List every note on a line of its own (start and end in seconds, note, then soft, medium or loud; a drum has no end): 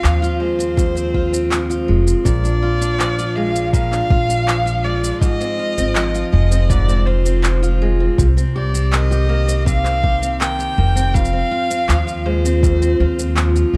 0.00 0.76 F2 medium
0.00 1.51 F3 medium
0.00 0.58 C4 medium
0.00 0.22 F4 medium
0.00 0.37 F5 loud
0.04 1.89 D#2 medium
0.04 clap medium
0.04 shaker soft
0.22 1.14 F4 medium
0.22 shaker soft
0.40 1.88 G#3 medium
0.40 1.85 C5 medium
0.59 0.94 C4 medium
0.59 shaker medium
0.77 2.26 F2 medium
0.77 kick loud
0.77 shaker medium
0.95 1.31 C4 medium
0.95 shaker soft
1.14 1.69 F4 medium
1.14 kick medium
1.32 2.05 C4 soft
1.32 shaker medium
1.51 2.99 F3 medium
1.51 clap medium
1.51 shaker medium
1.70 2.62 F4 medium
1.70 shaker soft
1.88 2.12 F1 medium
1.88 2.47 G#3 medium
2.07 2.33 C4 medium
2.07 shaker medium
2.25 3.99 A#1 medium
2.25 3.72 A#2 medium
2.25 3.37 D5 loud
2.25 kick loud
2.25 shaker medium
2.44 2.80 D4 medium
2.44 shaker soft
2.63 3.18 F4 medium
2.81 3.54 D4 medium
2.81 shaker medium
3.00 4.47 F3 medium
3.00 clap medium
3.00 shaker soft
3.19 4.10 F4 medium
3.19 shaker soft
3.36 4.84 G#3 medium
3.36 3.73 F5 loud
3.56 3.91 D4 medium
3.56 shaker medium
3.73 5.22 A#2 medium
3.73 4.86 F5 loud
3.73 kick loud
3.73 shaker soft
3.92 4.28 D4 medium
3.92 clap soft
3.92 shaker soft
4.10 5.10 A#1 medium
4.10 4.65 F4 medium
4.10 kick loud
4.29 5.02 D4 medium
4.29 shaker medium
4.47 5.95 F3 medium
4.47 clap medium
4.47 shaker medium
4.66 5.59 F4 medium
4.66 shaker soft
4.84 6.32 G#3 medium
4.84 5.20 D5 medium
5.03 5.29 D4 medium
5.03 shaker medium
5.21 6.69 G#2 medium
5.21 6.29 D#5 loud
5.21 kick loud
5.21 shaker medium
5.40 5.77 C4 medium
5.40 shaker soft
5.59 6.13 F4 medium
5.78 6.22 G#1 medium
5.78 6.50 C4 medium
5.78 shaker medium
5.95 7.42 F3 medium
5.95 clap medium
5.95 shaker soft
6.14 7.06 F4 medium
6.14 shaker soft
6.32 8.07 F1 medium
6.32 7.81 G#3 medium
6.32 6.71 D#5 medium
6.51 6.88 C4 medium
6.51 shaker medium
6.69 8.26 G#2 medium
6.69 7.08 D5 loud
6.69 kick loud
6.69 shaker medium
6.88 7.25 C4 medium
6.88 shaker soft
7.06 7.61 F4 medium
7.06 7.81 C5 medium
7.25 8.00 C4 medium
7.25 shaker medium
7.43 8.26 F3 medium
7.43 clap loud
7.43 shaker medium
7.62 8.26 F4 medium
7.62 shaker soft
7.82 8.26 G#3 medium
8.00 8.36 C4 medium
8.18 10.66 C2 medium
8.18 9.65 C3 medium
8.18 kick loud
8.18 shaker medium
8.37 8.74 C4 medium
8.37 shaker soft
8.56 9.10 G4 medium
8.56 8.95 D5 medium
8.74 9.47 C4 medium
8.74 shaker medium
8.93 10.39 D#3 medium
8.93 9.66 D#5 medium
8.93 clap medium
8.93 shaker medium
9.11 10.02 G4 medium
9.11 shaker soft
9.29 10.77 A#3 medium
9.48 9.84 C4 medium
9.48 shaker medium
9.66 11.22 C3 medium
9.66 10.37 F5 loud
9.66 kick loud
9.66 shaker medium
9.84 10.21 C4 medium
9.84 clap soft
9.84 shaker soft
10.03 10.58 G4 medium
10.03 kick loud
10.22 10.95 C4 medium
10.22 shaker medium
10.40 11.22 D#3 medium
10.40 11.16 G5 loud
10.40 clap medium
10.40 shaker medium
10.59 11.22 G4 medium
10.59 shaker soft
10.78 11.41 F1 medium
10.78 11.22 A#3 medium
10.96 11.33 C4 medium
10.96 shaker medium
11.14 12.62 F2 medium
11.14 12.27 F5 loud
11.14 kick loud
11.14 shaker medium
11.25 shaker soft
11.33 11.69 C4 medium
11.51 12.07 F4 medium
11.70 12.44 C4 medium
11.70 shaker medium
11.89 12.99 D#2 medium
11.89 13.37 F3 medium
11.89 clap medium
11.89 shaker medium
12.07 13.00 F4 medium
12.07 shaker soft
12.26 13.74 G#3 medium
12.26 13.74 C5 medium
12.45 12.81 C4 medium
12.45 shaker medium
12.63 13.77 F2 medium
12.63 kick loud
12.63 shaker medium
12.82 13.18 C4 medium
12.82 shaker soft
13.00 13.63 D#2 medium
13.00 13.55 F4 medium
13.19 13.77 C4 soft
13.19 shaker medium
13.37 13.77 F3 medium
13.37 clap medium
13.37 shaker medium
13.56 13.77 F4 medium
13.56 shaker soft
13.74 13.77 F1 medium